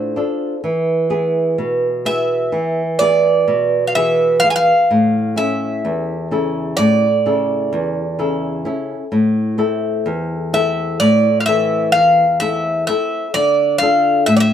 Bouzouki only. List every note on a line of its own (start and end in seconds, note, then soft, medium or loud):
0.00 0.60 C5 medium
2.06 2.97 E5 medium
2.99 3.83 D5 medium
3.87 3.95 F5 medium
3.95 4.39 E5 medium
4.40 4.49 F5 loud
4.50 4.55 G#5 medium
4.56 5.37 F5 loud
5.38 6.27 E5 medium
6.77 8.61 D5 loud
10.54 10.97 E5 medium
11.00 11.40 D5 loud
11.40 11.45 F5 medium
11.46 11.90 E5 loud
11.92 12.40 F5 loud
12.40 12.84 E5 loud
12.87 13.34 E5 medium
13.34 13.78 D5 loud
13.78 14.23 F5 medium
14.26 14.34 E5 medium
14.37 14.40 D5 medium
14.37 14.53 E5 medium